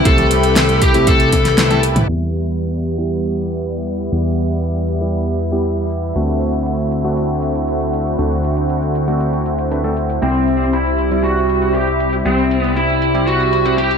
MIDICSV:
0, 0, Header, 1, 6, 480
1, 0, Start_track
1, 0, Tempo, 508475
1, 51, Time_signature, 4, 2, 24, 8
1, 13195, End_track
2, 0, Start_track
2, 0, Title_t, "Lead electric guitar"
2, 0, Program_c, 0, 29
2, 50, Note_on_c, 0, 69, 105
2, 773, Note_on_c, 0, 67, 89
2, 792, Note_off_c, 0, 69, 0
2, 1015, Note_on_c, 0, 69, 87
2, 1019, Note_off_c, 0, 67, 0
2, 1695, Note_off_c, 0, 69, 0
2, 9654, Note_on_c, 0, 60, 92
2, 10132, Note_on_c, 0, 64, 95
2, 10147, Note_off_c, 0, 60, 0
2, 10606, Note_off_c, 0, 64, 0
2, 10610, Note_on_c, 0, 66, 97
2, 11088, Note_off_c, 0, 66, 0
2, 11091, Note_on_c, 0, 67, 97
2, 11426, Note_off_c, 0, 67, 0
2, 11572, Note_on_c, 0, 60, 95
2, 11903, Note_off_c, 0, 60, 0
2, 11903, Note_on_c, 0, 59, 95
2, 12018, Note_off_c, 0, 59, 0
2, 12050, Note_on_c, 0, 64, 93
2, 12528, Note_off_c, 0, 64, 0
2, 12531, Note_on_c, 0, 66, 92
2, 12978, Note_off_c, 0, 66, 0
2, 13012, Note_on_c, 0, 67, 99
2, 13195, Note_off_c, 0, 67, 0
2, 13195, End_track
3, 0, Start_track
3, 0, Title_t, "Electric grand piano"
3, 0, Program_c, 1, 2
3, 50, Note_on_c, 1, 57, 74
3, 50, Note_on_c, 1, 60, 69
3, 50, Note_on_c, 1, 64, 67
3, 50, Note_on_c, 1, 67, 81
3, 862, Note_off_c, 1, 57, 0
3, 862, Note_off_c, 1, 60, 0
3, 862, Note_off_c, 1, 64, 0
3, 862, Note_off_c, 1, 67, 0
3, 890, Note_on_c, 1, 60, 87
3, 891, Note_on_c, 1, 57, 91
3, 891, Note_on_c, 1, 64, 89
3, 891, Note_on_c, 1, 67, 102
3, 1222, Note_off_c, 1, 57, 0
3, 1222, Note_off_c, 1, 60, 0
3, 1222, Note_off_c, 1, 64, 0
3, 1222, Note_off_c, 1, 67, 0
3, 1491, Note_on_c, 1, 57, 77
3, 1491, Note_on_c, 1, 60, 65
3, 1491, Note_on_c, 1, 64, 67
3, 1491, Note_on_c, 1, 71, 83
3, 1582, Note_off_c, 1, 57, 0
3, 1582, Note_off_c, 1, 60, 0
3, 1582, Note_off_c, 1, 64, 0
3, 1582, Note_off_c, 1, 71, 0
3, 1610, Note_on_c, 1, 57, 98
3, 1610, Note_on_c, 1, 60, 89
3, 1610, Note_on_c, 1, 64, 89
3, 1610, Note_on_c, 1, 69, 109
3, 1686, Note_off_c, 1, 57, 0
3, 1686, Note_off_c, 1, 60, 0
3, 1686, Note_off_c, 1, 64, 0
3, 1686, Note_off_c, 1, 69, 0
3, 1971, Note_on_c, 1, 55, 78
3, 1971, Note_on_c, 1, 59, 73
3, 1971, Note_on_c, 1, 64, 72
3, 1971, Note_on_c, 1, 67, 91
3, 2782, Note_off_c, 1, 55, 0
3, 2782, Note_off_c, 1, 59, 0
3, 2782, Note_off_c, 1, 64, 0
3, 2782, Note_off_c, 1, 67, 0
3, 2811, Note_on_c, 1, 55, 86
3, 2811, Note_on_c, 1, 59, 81
3, 2811, Note_on_c, 1, 64, 80
3, 2811, Note_on_c, 1, 67, 94
3, 3862, Note_off_c, 1, 55, 0
3, 3862, Note_off_c, 1, 59, 0
3, 3862, Note_off_c, 1, 64, 0
3, 3862, Note_off_c, 1, 67, 0
3, 3891, Note_on_c, 1, 59, 61
3, 3892, Note_on_c, 1, 55, 64
3, 3892, Note_on_c, 1, 64, 62
3, 3892, Note_on_c, 1, 67, 74
3, 4702, Note_off_c, 1, 59, 0
3, 4703, Note_off_c, 1, 55, 0
3, 4703, Note_off_c, 1, 64, 0
3, 4703, Note_off_c, 1, 67, 0
3, 4732, Note_on_c, 1, 55, 86
3, 4732, Note_on_c, 1, 59, 76
3, 4732, Note_on_c, 1, 64, 77
3, 4732, Note_on_c, 1, 67, 93
3, 5062, Note_off_c, 1, 55, 0
3, 5063, Note_off_c, 1, 59, 0
3, 5063, Note_off_c, 1, 64, 0
3, 5063, Note_off_c, 1, 67, 0
3, 5211, Note_on_c, 1, 67, 93
3, 5212, Note_on_c, 1, 55, 84
3, 5212, Note_on_c, 1, 59, 78
3, 5212, Note_on_c, 1, 64, 78
3, 5782, Note_off_c, 1, 64, 0
3, 5782, Note_off_c, 1, 67, 0
3, 5783, Note_off_c, 1, 55, 0
3, 5783, Note_off_c, 1, 59, 0
3, 5811, Note_on_c, 1, 60, 76
3, 5811, Note_on_c, 1, 62, 72
3, 5812, Note_on_c, 1, 57, 83
3, 5812, Note_on_c, 1, 66, 92
3, 6622, Note_off_c, 1, 60, 0
3, 6622, Note_off_c, 1, 62, 0
3, 6623, Note_off_c, 1, 57, 0
3, 6623, Note_off_c, 1, 66, 0
3, 6650, Note_on_c, 1, 57, 91
3, 6650, Note_on_c, 1, 60, 81
3, 6651, Note_on_c, 1, 62, 86
3, 6651, Note_on_c, 1, 66, 98
3, 7702, Note_off_c, 1, 57, 0
3, 7702, Note_off_c, 1, 60, 0
3, 7702, Note_off_c, 1, 62, 0
3, 7702, Note_off_c, 1, 66, 0
3, 7729, Note_on_c, 1, 57, 65
3, 7730, Note_on_c, 1, 60, 64
3, 7730, Note_on_c, 1, 62, 60
3, 7730, Note_on_c, 1, 66, 74
3, 8541, Note_off_c, 1, 57, 0
3, 8541, Note_off_c, 1, 60, 0
3, 8541, Note_off_c, 1, 62, 0
3, 8542, Note_off_c, 1, 66, 0
3, 8569, Note_on_c, 1, 57, 81
3, 8569, Note_on_c, 1, 60, 76
3, 8569, Note_on_c, 1, 62, 77
3, 8569, Note_on_c, 1, 66, 93
3, 8901, Note_off_c, 1, 57, 0
3, 8901, Note_off_c, 1, 60, 0
3, 8901, Note_off_c, 1, 62, 0
3, 8901, Note_off_c, 1, 66, 0
3, 9170, Note_on_c, 1, 57, 67
3, 9170, Note_on_c, 1, 60, 62
3, 9170, Note_on_c, 1, 62, 64
3, 9170, Note_on_c, 1, 71, 75
3, 9262, Note_off_c, 1, 57, 0
3, 9262, Note_off_c, 1, 60, 0
3, 9262, Note_off_c, 1, 62, 0
3, 9262, Note_off_c, 1, 71, 0
3, 9290, Note_on_c, 1, 57, 90
3, 9290, Note_on_c, 1, 60, 82
3, 9290, Note_on_c, 1, 62, 80
3, 9290, Note_on_c, 1, 69, 96
3, 9366, Note_off_c, 1, 57, 0
3, 9366, Note_off_c, 1, 60, 0
3, 9366, Note_off_c, 1, 62, 0
3, 9366, Note_off_c, 1, 69, 0
3, 9649, Note_on_c, 1, 55, 82
3, 9649, Note_on_c, 1, 60, 76
3, 9649, Note_on_c, 1, 64, 75
3, 9649, Note_on_c, 1, 67, 88
3, 10461, Note_off_c, 1, 55, 0
3, 10461, Note_off_c, 1, 60, 0
3, 10461, Note_off_c, 1, 64, 0
3, 10461, Note_off_c, 1, 67, 0
3, 10490, Note_on_c, 1, 55, 90
3, 10490, Note_on_c, 1, 60, 80
3, 10490, Note_on_c, 1, 64, 82
3, 11542, Note_off_c, 1, 55, 0
3, 11542, Note_off_c, 1, 60, 0
3, 11542, Note_off_c, 1, 64, 0
3, 11570, Note_on_c, 1, 60, 60
3, 11570, Note_on_c, 1, 67, 74
3, 11571, Note_on_c, 1, 55, 70
3, 11571, Note_on_c, 1, 64, 61
3, 12382, Note_off_c, 1, 55, 0
3, 12382, Note_off_c, 1, 60, 0
3, 12382, Note_off_c, 1, 64, 0
3, 12382, Note_off_c, 1, 67, 0
3, 12409, Note_on_c, 1, 64, 80
3, 12410, Note_on_c, 1, 55, 84
3, 12410, Note_on_c, 1, 60, 78
3, 12410, Note_on_c, 1, 67, 96
3, 12741, Note_off_c, 1, 60, 0
3, 12741, Note_off_c, 1, 64, 0
3, 12742, Note_off_c, 1, 55, 0
3, 12742, Note_off_c, 1, 67, 0
3, 12889, Note_on_c, 1, 55, 88
3, 12890, Note_on_c, 1, 60, 78
3, 12890, Note_on_c, 1, 64, 79
3, 12890, Note_on_c, 1, 67, 96
3, 13195, Note_off_c, 1, 55, 0
3, 13195, Note_off_c, 1, 60, 0
3, 13195, Note_off_c, 1, 64, 0
3, 13195, Note_off_c, 1, 67, 0
3, 13195, End_track
4, 0, Start_track
4, 0, Title_t, "Analog synth pad"
4, 0, Program_c, 2, 89
4, 0, Note_on_c, 2, 48, 84
4, 0, Note_on_c, 2, 57, 74
4, 0, Note_on_c, 2, 64, 74
4, 0, Note_on_c, 2, 67, 89
4, 0, Note_on_c, 2, 71, 73
4, 1934, Note_off_c, 2, 48, 0
4, 1934, Note_off_c, 2, 57, 0
4, 1934, Note_off_c, 2, 64, 0
4, 1934, Note_off_c, 2, 71, 0
4, 1935, Note_off_c, 2, 67, 0
4, 1973, Note_on_c, 2, 59, 68
4, 1974, Note_on_c, 2, 55, 76
4, 1974, Note_on_c, 2, 64, 83
4, 5774, Note_off_c, 2, 59, 0
4, 5775, Note_off_c, 2, 55, 0
4, 5813, Note_on_c, 2, 60, 70
4, 5814, Note_on_c, 2, 50, 75
4, 5814, Note_on_c, 2, 57, 67
4, 5814, Note_on_c, 2, 66, 84
4, 9615, Note_off_c, 2, 50, 0
4, 9615, Note_off_c, 2, 57, 0
4, 9615, Note_off_c, 2, 64, 0
4, 9615, Note_off_c, 2, 66, 0
4, 9651, Note_on_c, 2, 64, 85
4, 9652, Note_on_c, 2, 55, 76
4, 13195, Note_off_c, 2, 55, 0
4, 13195, Note_off_c, 2, 60, 0
4, 13195, Note_off_c, 2, 64, 0
4, 13195, End_track
5, 0, Start_track
5, 0, Title_t, "Analog synth bass"
5, 0, Program_c, 3, 38
5, 51, Note_on_c, 3, 36, 92
5, 1947, Note_off_c, 3, 36, 0
5, 1971, Note_on_c, 3, 40, 86
5, 3867, Note_off_c, 3, 40, 0
5, 3892, Note_on_c, 3, 40, 87
5, 5787, Note_off_c, 3, 40, 0
5, 5811, Note_on_c, 3, 38, 87
5, 7707, Note_off_c, 3, 38, 0
5, 7731, Note_on_c, 3, 38, 88
5, 9627, Note_off_c, 3, 38, 0
5, 9651, Note_on_c, 3, 36, 83
5, 11547, Note_off_c, 3, 36, 0
5, 11571, Note_on_c, 3, 36, 86
5, 13195, Note_off_c, 3, 36, 0
5, 13195, End_track
6, 0, Start_track
6, 0, Title_t, "Drums"
6, 50, Note_on_c, 9, 36, 120
6, 50, Note_on_c, 9, 42, 79
6, 145, Note_off_c, 9, 36, 0
6, 145, Note_off_c, 9, 42, 0
6, 171, Note_on_c, 9, 42, 37
6, 171, Note_on_c, 9, 47, 65
6, 265, Note_off_c, 9, 42, 0
6, 265, Note_off_c, 9, 47, 0
6, 291, Note_on_c, 9, 42, 85
6, 385, Note_off_c, 9, 42, 0
6, 410, Note_on_c, 9, 42, 52
6, 505, Note_off_c, 9, 42, 0
6, 531, Note_on_c, 9, 38, 121
6, 531, Note_on_c, 9, 42, 81
6, 625, Note_off_c, 9, 38, 0
6, 625, Note_off_c, 9, 42, 0
6, 651, Note_on_c, 9, 42, 40
6, 745, Note_off_c, 9, 42, 0
6, 770, Note_on_c, 9, 42, 84
6, 771, Note_on_c, 9, 36, 104
6, 865, Note_off_c, 9, 36, 0
6, 865, Note_off_c, 9, 42, 0
6, 890, Note_on_c, 9, 42, 53
6, 985, Note_off_c, 9, 42, 0
6, 1010, Note_on_c, 9, 42, 83
6, 1011, Note_on_c, 9, 36, 118
6, 1105, Note_off_c, 9, 36, 0
6, 1105, Note_off_c, 9, 42, 0
6, 1131, Note_on_c, 9, 42, 38
6, 1225, Note_off_c, 9, 42, 0
6, 1251, Note_on_c, 9, 36, 61
6, 1251, Note_on_c, 9, 42, 80
6, 1251, Note_on_c, 9, 48, 61
6, 1345, Note_off_c, 9, 36, 0
6, 1345, Note_off_c, 9, 42, 0
6, 1345, Note_off_c, 9, 48, 0
6, 1370, Note_on_c, 9, 38, 37
6, 1370, Note_on_c, 9, 42, 57
6, 1465, Note_off_c, 9, 38, 0
6, 1465, Note_off_c, 9, 42, 0
6, 1490, Note_on_c, 9, 38, 116
6, 1490, Note_on_c, 9, 42, 81
6, 1490, Note_on_c, 9, 47, 77
6, 1585, Note_off_c, 9, 38, 0
6, 1585, Note_off_c, 9, 42, 0
6, 1585, Note_off_c, 9, 47, 0
6, 1610, Note_on_c, 9, 42, 37
6, 1610, Note_on_c, 9, 47, 75
6, 1705, Note_off_c, 9, 42, 0
6, 1705, Note_off_c, 9, 47, 0
6, 1730, Note_on_c, 9, 42, 83
6, 1824, Note_off_c, 9, 42, 0
6, 1850, Note_on_c, 9, 42, 53
6, 1850, Note_on_c, 9, 45, 84
6, 1850, Note_on_c, 9, 47, 98
6, 1944, Note_off_c, 9, 42, 0
6, 1944, Note_off_c, 9, 45, 0
6, 1944, Note_off_c, 9, 47, 0
6, 1969, Note_on_c, 9, 42, 75
6, 2063, Note_off_c, 9, 42, 0
6, 2211, Note_on_c, 9, 42, 78
6, 2305, Note_off_c, 9, 42, 0
6, 2330, Note_on_c, 9, 42, 50
6, 2425, Note_off_c, 9, 42, 0
6, 2451, Note_on_c, 9, 42, 75
6, 2545, Note_off_c, 9, 42, 0
6, 2571, Note_on_c, 9, 42, 37
6, 2665, Note_off_c, 9, 42, 0
6, 2691, Note_on_c, 9, 42, 74
6, 2785, Note_off_c, 9, 42, 0
6, 2811, Note_on_c, 9, 42, 50
6, 2906, Note_off_c, 9, 42, 0
6, 2931, Note_on_c, 9, 42, 76
6, 3026, Note_off_c, 9, 42, 0
6, 3171, Note_on_c, 9, 42, 73
6, 3266, Note_off_c, 9, 42, 0
6, 3291, Note_on_c, 9, 42, 52
6, 3386, Note_off_c, 9, 42, 0
6, 3412, Note_on_c, 9, 42, 77
6, 3506, Note_off_c, 9, 42, 0
6, 3532, Note_on_c, 9, 42, 35
6, 3626, Note_off_c, 9, 42, 0
6, 3652, Note_on_c, 9, 42, 75
6, 3747, Note_off_c, 9, 42, 0
6, 3772, Note_on_c, 9, 42, 48
6, 3866, Note_off_c, 9, 42, 0
6, 3892, Note_on_c, 9, 42, 75
6, 3986, Note_off_c, 9, 42, 0
6, 4013, Note_on_c, 9, 42, 35
6, 4107, Note_off_c, 9, 42, 0
6, 4132, Note_on_c, 9, 42, 78
6, 4226, Note_off_c, 9, 42, 0
6, 4252, Note_on_c, 9, 42, 49
6, 4346, Note_off_c, 9, 42, 0
6, 4373, Note_on_c, 9, 42, 76
6, 4467, Note_off_c, 9, 42, 0
6, 4493, Note_on_c, 9, 42, 35
6, 4587, Note_off_c, 9, 42, 0
6, 4612, Note_on_c, 9, 42, 80
6, 4706, Note_off_c, 9, 42, 0
6, 4732, Note_on_c, 9, 42, 49
6, 4826, Note_off_c, 9, 42, 0
6, 4852, Note_on_c, 9, 42, 76
6, 4946, Note_off_c, 9, 42, 0
6, 4971, Note_on_c, 9, 42, 35
6, 5065, Note_off_c, 9, 42, 0
6, 5091, Note_on_c, 9, 42, 75
6, 5185, Note_off_c, 9, 42, 0
6, 5211, Note_on_c, 9, 42, 51
6, 5306, Note_off_c, 9, 42, 0
6, 5331, Note_on_c, 9, 42, 76
6, 5426, Note_off_c, 9, 42, 0
6, 5451, Note_on_c, 9, 42, 35
6, 5546, Note_off_c, 9, 42, 0
6, 5570, Note_on_c, 9, 42, 73
6, 5664, Note_off_c, 9, 42, 0
6, 5689, Note_on_c, 9, 42, 49
6, 5784, Note_off_c, 9, 42, 0
6, 5810, Note_on_c, 9, 42, 73
6, 5905, Note_off_c, 9, 42, 0
6, 5930, Note_on_c, 9, 42, 35
6, 6024, Note_off_c, 9, 42, 0
6, 6050, Note_on_c, 9, 42, 74
6, 6144, Note_off_c, 9, 42, 0
6, 6170, Note_on_c, 9, 42, 50
6, 6264, Note_off_c, 9, 42, 0
6, 6289, Note_on_c, 9, 42, 77
6, 6384, Note_off_c, 9, 42, 0
6, 6409, Note_on_c, 9, 42, 36
6, 6504, Note_off_c, 9, 42, 0
6, 6529, Note_on_c, 9, 42, 78
6, 6623, Note_off_c, 9, 42, 0
6, 6649, Note_on_c, 9, 42, 50
6, 6744, Note_off_c, 9, 42, 0
6, 6769, Note_on_c, 9, 42, 76
6, 6864, Note_off_c, 9, 42, 0
6, 7009, Note_on_c, 9, 42, 73
6, 7104, Note_off_c, 9, 42, 0
6, 7130, Note_on_c, 9, 42, 51
6, 7224, Note_off_c, 9, 42, 0
6, 7250, Note_on_c, 9, 42, 71
6, 7344, Note_off_c, 9, 42, 0
6, 7370, Note_on_c, 9, 42, 35
6, 7464, Note_off_c, 9, 42, 0
6, 7490, Note_on_c, 9, 42, 76
6, 7584, Note_off_c, 9, 42, 0
6, 7611, Note_on_c, 9, 42, 48
6, 7705, Note_off_c, 9, 42, 0
6, 7730, Note_on_c, 9, 42, 70
6, 7824, Note_off_c, 9, 42, 0
6, 7850, Note_on_c, 9, 42, 33
6, 7944, Note_off_c, 9, 42, 0
6, 7969, Note_on_c, 9, 42, 72
6, 8064, Note_off_c, 9, 42, 0
6, 8089, Note_on_c, 9, 42, 46
6, 8184, Note_off_c, 9, 42, 0
6, 8209, Note_on_c, 9, 42, 73
6, 8304, Note_off_c, 9, 42, 0
6, 8330, Note_on_c, 9, 42, 35
6, 8424, Note_off_c, 9, 42, 0
6, 8450, Note_on_c, 9, 42, 75
6, 8544, Note_off_c, 9, 42, 0
6, 8570, Note_on_c, 9, 42, 48
6, 8664, Note_off_c, 9, 42, 0
6, 8690, Note_on_c, 9, 42, 71
6, 8784, Note_off_c, 9, 42, 0
6, 8810, Note_on_c, 9, 42, 33
6, 8905, Note_off_c, 9, 42, 0
6, 8930, Note_on_c, 9, 42, 68
6, 9024, Note_off_c, 9, 42, 0
6, 9050, Note_on_c, 9, 42, 49
6, 9144, Note_off_c, 9, 42, 0
6, 9170, Note_on_c, 9, 42, 73
6, 9265, Note_off_c, 9, 42, 0
6, 9290, Note_on_c, 9, 42, 33
6, 9385, Note_off_c, 9, 42, 0
6, 9410, Note_on_c, 9, 42, 72
6, 9505, Note_off_c, 9, 42, 0
6, 9530, Note_on_c, 9, 42, 47
6, 9625, Note_off_c, 9, 42, 0
6, 9650, Note_on_c, 9, 42, 67
6, 9744, Note_off_c, 9, 42, 0
6, 9770, Note_on_c, 9, 42, 32
6, 9865, Note_off_c, 9, 42, 0
6, 9890, Note_on_c, 9, 42, 72
6, 9985, Note_off_c, 9, 42, 0
6, 10011, Note_on_c, 9, 42, 46
6, 10105, Note_off_c, 9, 42, 0
6, 10130, Note_on_c, 9, 42, 70
6, 10225, Note_off_c, 9, 42, 0
6, 10251, Note_on_c, 9, 42, 33
6, 10345, Note_off_c, 9, 42, 0
6, 10370, Note_on_c, 9, 42, 72
6, 10465, Note_off_c, 9, 42, 0
6, 10491, Note_on_c, 9, 42, 47
6, 10585, Note_off_c, 9, 42, 0
6, 10611, Note_on_c, 9, 42, 74
6, 10705, Note_off_c, 9, 42, 0
6, 10851, Note_on_c, 9, 42, 69
6, 10945, Note_off_c, 9, 42, 0
6, 10971, Note_on_c, 9, 42, 47
6, 11065, Note_off_c, 9, 42, 0
6, 11090, Note_on_c, 9, 42, 71
6, 11185, Note_off_c, 9, 42, 0
6, 11210, Note_on_c, 9, 42, 32
6, 11305, Note_off_c, 9, 42, 0
6, 11330, Note_on_c, 9, 42, 70
6, 11425, Note_off_c, 9, 42, 0
6, 11451, Note_on_c, 9, 42, 47
6, 11545, Note_off_c, 9, 42, 0
6, 11571, Note_on_c, 9, 42, 65
6, 11665, Note_off_c, 9, 42, 0
6, 11691, Note_on_c, 9, 42, 33
6, 11786, Note_off_c, 9, 42, 0
6, 11812, Note_on_c, 9, 42, 73
6, 11906, Note_off_c, 9, 42, 0
6, 11932, Note_on_c, 9, 42, 48
6, 12026, Note_off_c, 9, 42, 0
6, 12051, Note_on_c, 9, 42, 72
6, 12146, Note_off_c, 9, 42, 0
6, 12171, Note_on_c, 9, 42, 34
6, 12266, Note_off_c, 9, 42, 0
6, 12291, Note_on_c, 9, 42, 73
6, 12385, Note_off_c, 9, 42, 0
6, 12411, Note_on_c, 9, 42, 47
6, 12505, Note_off_c, 9, 42, 0
6, 12531, Note_on_c, 9, 42, 70
6, 12626, Note_off_c, 9, 42, 0
6, 12651, Note_on_c, 9, 42, 32
6, 12745, Note_off_c, 9, 42, 0
6, 12771, Note_on_c, 9, 42, 68
6, 12865, Note_off_c, 9, 42, 0
6, 12891, Note_on_c, 9, 42, 48
6, 12985, Note_off_c, 9, 42, 0
6, 13010, Note_on_c, 9, 42, 72
6, 13105, Note_off_c, 9, 42, 0
6, 13131, Note_on_c, 9, 42, 34
6, 13195, Note_off_c, 9, 42, 0
6, 13195, End_track
0, 0, End_of_file